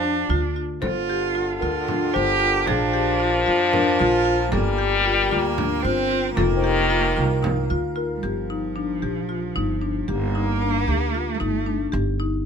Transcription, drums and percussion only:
0.82 frame drum soft
1.35 frame drum soft
1.88 frame drum soft
2.67 frame drum soft
3.20 frame drum soft
3.73 frame drum medium
4.52 frame drum medium
5.05 frame drum soft
5.58 frame drum medium
6.37 frame drum medium
7.44 frame drum medium

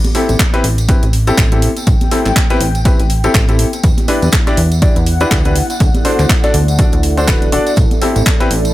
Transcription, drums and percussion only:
0.04 closed hi-hat soft
0.04 tambourine soft
0.04 high conga medium
0.15 snare soft
0.15 closed hi-hat medium
0.15 open hi-hat loud
0.29 closed hi-hat soft
0.29 tambourine medium
0.29 high conga medium
0.39 kick loud
0.39 snare loud
0.39 clap loud
0.39 closed hi-hat medium
0.39 tambourine medium
0.53 snare medium
0.53 closed hi-hat soft
0.53 tambourine soft
0.64 closed hi-hat medium
0.64 open hi-hat loud
0.78 closed hi-hat soft
0.78 tambourine medium
0.89 kick loud
0.89 closed hi-hat medium
0.89 tambourine medium
1.03 closed hi-hat soft
1.03 tambourine soft
1.13 closed hi-hat medium
1.13 open hi-hat loud
1.27 closed hi-hat soft
1.27 tambourine medium
1.38 kick loud
1.38 snare loud
1.38 clap loud
1.38 closed hi-hat medium
1.38 tambourine medium
1.52 closed hi-hat soft
1.52 tambourine soft
1.52 high conga medium
1.62 closed hi-hat medium
1.62 open hi-hat loud
1.77 closed hi-hat soft
1.77 tambourine medium
1.87 kick loud
1.87 closed hi-hat medium
1.87 tambourine medium
2.01 closed hi-hat soft
2.01 tambourine soft
2.01 high conga medium
2.11 snare medium
2.11 closed hi-hat medium
2.11 open hi-hat loud
2.26 clap soft
2.26 closed hi-hat soft
2.26 tambourine medium
2.26 high conga medium
2.36 kick loud
2.36 snare loud
2.36 clap loud
2.36 closed hi-hat medium
2.36 tambourine medium
2.50 snare medium
2.50 closed hi-hat soft
2.50 tambourine soft
2.61 closed hi-hat medium
2.61 open hi-hat loud
2.75 closed hi-hat soft
2.75 tambourine medium
2.85 kick loud
2.85 closed hi-hat medium
2.85 tambourine medium
3.00 closed hi-hat soft
3.00 tambourine soft
3.10 closed hi-hat medium
3.10 open hi-hat loud
3.24 closed hi-hat soft
3.24 tambourine medium
3.34 kick loud
3.34 snare loud
3.34 clap loud
3.34 closed hi-hat medium
3.34 tambourine medium
3.48 closed hi-hat soft
3.48 tambourine soft
3.48 high conga medium
3.59 closed hi-hat medium
3.59 open hi-hat loud
3.73 closed hi-hat soft
3.73 tambourine medium
3.83 kick loud
3.83 closed hi-hat medium
3.83 tambourine medium
3.98 closed hi-hat soft
3.98 tambourine soft
3.98 high conga medium
4.08 snare soft
4.08 closed hi-hat medium
4.08 open hi-hat loud
4.22 closed hi-hat soft
4.22 tambourine medium
4.22 high conga medium
4.32 kick loud
4.32 snare loud
4.32 clap loud
4.32 closed hi-hat medium
4.32 tambourine medium
4.47 snare medium
4.47 closed hi-hat soft
4.47 tambourine soft
4.57 closed hi-hat medium
4.57 open hi-hat loud
4.71 closed hi-hat soft
4.71 tambourine medium
4.82 kick loud
4.82 closed hi-hat medium
4.82 tambourine medium
4.96 closed hi-hat soft
4.96 tambourine soft
5.06 closed hi-hat medium
5.06 open hi-hat loud
5.20 closed hi-hat soft
5.20 tambourine medium
5.31 kick loud
5.31 snare loud
5.31 clap loud
5.31 closed hi-hat medium
5.31 tambourine medium
5.45 closed hi-hat soft
5.45 tambourine soft
5.45 high conga medium
5.56 closed hi-hat medium
5.56 open hi-hat loud
5.70 closed hi-hat soft
5.70 tambourine medium
5.80 kick loud
5.80 closed hi-hat medium
5.80 tambourine medium
5.94 closed hi-hat soft
5.94 tambourine soft
5.94 high conga medium
6.05 snare medium
6.05 closed hi-hat medium
6.05 open hi-hat loud
6.19 clap soft
6.19 closed hi-hat soft
6.19 tambourine medium
6.19 high conga medium
6.29 kick loud
6.29 snare loud
6.29 clap loud
6.29 closed hi-hat medium
6.29 tambourine medium
6.43 snare medium
6.43 closed hi-hat soft
6.43 tambourine soft
6.54 closed hi-hat medium
6.54 open hi-hat loud
6.54 high conga medium
6.68 closed hi-hat soft
6.68 tambourine medium
6.79 kick loud
6.79 closed hi-hat medium
6.79 tambourine medium
6.92 closed hi-hat soft
6.92 tambourine soft
7.03 closed hi-hat medium
7.03 open hi-hat loud
7.17 closed hi-hat soft
7.17 tambourine medium
7.28 kick loud
7.28 snare loud
7.28 clap loud
7.28 closed hi-hat medium
7.28 tambourine medium
7.42 closed hi-hat soft
7.42 tambourine soft
7.42 high conga medium
7.52 closed hi-hat medium
7.52 open hi-hat loud
7.67 closed hi-hat soft
7.67 tambourine medium
7.76 kick loud
7.76 closed hi-hat medium
7.76 tambourine medium
7.91 closed hi-hat soft
7.91 tambourine soft
7.91 high conga medium
8.02 snare soft
8.02 closed hi-hat medium
8.02 open hi-hat loud
8.16 closed hi-hat soft
8.16 tambourine medium
8.16 high conga medium
8.25 kick loud
8.25 snare loud
8.25 clap loud
8.25 closed hi-hat medium
8.25 tambourine medium
8.40 snare medium
8.40 closed hi-hat soft
8.40 tambourine soft
8.51 closed hi-hat medium
8.51 open hi-hat loud
8.65 closed hi-hat soft
8.65 tambourine medium

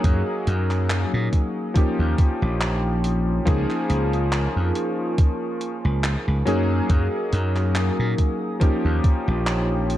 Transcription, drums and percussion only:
0.04 kick loud
0.04 closed hi-hat medium
0.47 closed hi-hat medium
0.71 clap soft
0.71 closed hi-hat soft
0.90 clap loud
0.90 closed hi-hat medium
1.33 kick medium
1.33 closed hi-hat medium
1.76 kick loud
1.76 closed hi-hat medium
2.18 kick loud
2.18 closed hi-hat medium
2.61 clap loud
2.61 closed hi-hat medium
3.04 closed hi-hat medium
3.47 kick loud
3.47 closed hi-hat medium
3.70 clap soft
3.90 closed hi-hat medium
4.13 closed hi-hat soft
4.32 clap loud
4.32 closed hi-hat medium
4.75 closed hi-hat medium
5.18 kick loud
5.18 closed hi-hat medium
5.61 closed hi-hat medium
6.04 clap loud
6.04 closed hi-hat medium
6.47 closed hi-hat medium
6.90 kick loud
6.90 closed hi-hat medium
7.33 closed hi-hat medium
7.56 clap soft
7.56 closed hi-hat soft
7.75 clap loud
7.75 closed hi-hat medium
8.18 kick medium
8.18 closed hi-hat medium
8.61 kick loud
8.61 closed hi-hat medium
9.04 kick loud
9.04 closed hi-hat medium
9.47 clap loud
9.47 closed hi-hat medium
9.90 closed hi-hat medium

